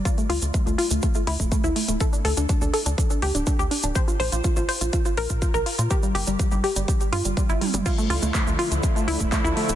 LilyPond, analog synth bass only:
\new Staff \with { instrumentName = "Analog synth bass" } { \clef bass \time 4/4 \key d \minor \tempo 4 = 123 r8 d,16 d,16 r16 d,16 r16 d,16 r8 d,16 d,,16 r16 d,16 r16 d,,16 | r8 d,16 d,16 r16 d,16 r16 d,16 r8 d,16 d,,16 r16 d,16 r16 d,,16 | r8 bes,,16 bes,,16 r16 bes,,16 r16 bes,,16 r8 bes,,16 bes,16 r16 bes,,16 r16 bes,16 | r8 g,,16 g,,16 r16 g,,16 r16 g,,16 r8 g,16 g,,16 r16 g,,16 r16 g,,16 |
r8 d,16 d,16 r16 d,16 r16 d,16 r8 d,16 d,,16 r16 d,16 r16 d,,16 | }